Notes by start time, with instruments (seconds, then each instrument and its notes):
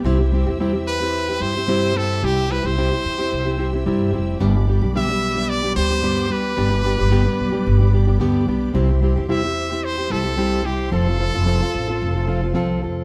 Already playing: string section G4
0.04 upright bass C2, steel-string acoustic guitar C3 G3 C4 E4 G4, string section E5 G5 E6
0.19 steel-string acoustic guitar C4 E4 G4
0.32 steel-string acoustic guitar G3 C4 E4 G4
0.47 upright bass E2, steel-string acoustic guitar C4 E4 G4
0.60 steel-string acoustic guitar C3 G3 C4 E4 G4
0.73 steel-string acoustic guitar C4 E4 G4
0.87 trumpet B4
1.01 steel-string acoustic guitar C4 E4 G4
1.28 steel-string acoustic guitar C4 E4 G4
1.39 upright bass G2, steel-string acoustic guitar G3 C4 E4 G4, trumpet C5
1.56 steel-string acoustic guitar C4 E4 G4
1.68 steel-string acoustic guitar C3 G3 C4 E4 G4
1.95 steel-string acoustic guitar G3 C4 E4 G4, trumpet A4
2.22 upright bass C2, steel-string acoustic guitar C3 G3 C4 E4 G4, trumpet G4
2.49 steel-string acoustic guitar G3 C4 E4 G4, trumpet B4
2.65 upright bass C2, steel-string acoustic guitar C4 E4 G4, trumpet C5
2.77 steel-string acoustic guitar C3 G3 C4 E4 G4
2.92 steel-string acoustic guitar C4 E4 G4
3.05 upright bass E2
3.18 steel-string acoustic guitar C4 E4 G4
3.32 upright bass C2
3.45 steel-string acoustic guitar C4 E4 G4
3.57 steel-string acoustic guitar G3 C4 E4 G4
3.73 steel-string acoustic guitar C4 E4 G4
3.86 upright bass G2, steel-string acoustic guitar C3 G3 C4 E4 G4
4.13 upright bass F1, steel-string acoustic guitar G3 C4 E4 G4
4.40 upright bass G1, steel-string acoustic guitar G2 D3 G3 B3 D4 G4, string section G4 D5 B5 D6
4.55 steel-string acoustic guitar G3 B3 D4 G4
4.67 steel-string acoustic guitar G3 B3 D4 G4
4.82 upright bass B1, steel-string acoustic guitar G3 B3 D4 G4
4.95 steel-string acoustic guitar G2 D3 G3 B3 D4 G4, trumpet E5
5.09 steel-string acoustic guitar G3 B3 D4 G4
5.35 steel-string acoustic guitar G3 B3 D4 G4
5.49 trumpet D5
5.63 steel-string acoustic guitar G3 B3 D4 G4
5.75 upright bass D2, steel-string acoustic guitar G3 B3 D4 G4, trumpet C5
5.91 steel-string acoustic guitar G3 B3 D4 G4
6.02 steel-string acoustic guitar G2 D3 G3 B3 D4 G4
6.29 steel-string acoustic guitar G3 B3 D4 G4, trumpet B4
6.56 upright bass G1, steel-string acoustic guitar G2 D3 G3 B3 D4 G4
6.71 steel-string acoustic guitar G3 B3 D4 G4
6.84 steel-string acoustic guitar G3 B3 D4 G4
6.98 upright bass G1, steel-string acoustic guitar G3 B3 D4 G4
7.10 steel-string acoustic guitar G2 D3 G3 B3 D4 G4
7.25 steel-string acoustic guitar G3 B3 D4 G4
7.39 upright bass B1
7.52 steel-string acoustic guitar G3 B3 D4 G4
7.67 upright bass G1
7.80 steel-string acoustic guitar G3 B3 D4 G4
7.92 steel-string acoustic guitar G3 B3 D4 G4
8.07 steel-string acoustic guitar G3 B3 D4 G4
8.19 steel-string acoustic guitar G2 D3 G3 B3 D4 G4
8.47 upright bass B1, steel-string acoustic guitar G3 B3 D4 G4
8.74 upright bass C2, steel-string acoustic guitar C3 G3 C4 E4 G4, string section G4 C5 E5 C6
8.89 steel-string acoustic guitar C4 E4 G4
9.01 steel-string acoustic guitar G3 C4 E4 G4
9.16 upright bass E2, steel-string acoustic guitar C4 E4 G4
9.29 steel-string acoustic guitar C3 G3 C4 E4 G4, trumpet E5
9.43 steel-string acoustic guitar C4 E4 G4
9.71 steel-string acoustic guitar C4 E4 G4
9.84 trumpet C5
9.98 steel-string acoustic guitar C4 E4 G4
10.10 upright bass C2, steel-string acoustic guitar G3 C4 E4 G4, trumpet A4
10.24 steel-string acoustic guitar C4 E4 G4
10.37 steel-string acoustic guitar C3 G3 C4 E4 G4
10.65 steel-string acoustic guitar C4 E4 G4, trumpet G4
10.91 upright bass F1, steel-string acoustic guitar F3 C4 F4 A4, trumpet A4, string section A4 F5
11.07 steel-string acoustic guitar C4 F4 A4
11.19 steel-string acoustic guitar F3 C4 F4 A4
11.34 upright bass F1, steel-string acoustic guitar C4 F4 A4
11.46 steel-string acoustic guitar F3 C4 F4 A4
11.61 steel-string acoustic guitar C4 F4 A4
11.74 upright bass A1
11.88 steel-string acoustic guitar C4 F4 A4
12.02 upright bass F1
12.15 steel-string acoustic guitar C4 F4 A4
12.27 steel-string acoustic guitar F3 C4 F4 A4
12.42 steel-string acoustic guitar C4 F4 A4
12.54 upright bass C2, steel-string acoustic guitar F3 C4 F4 A4
12.82 upright bass F1, steel-string acoustic guitar F3 C4 F4 A4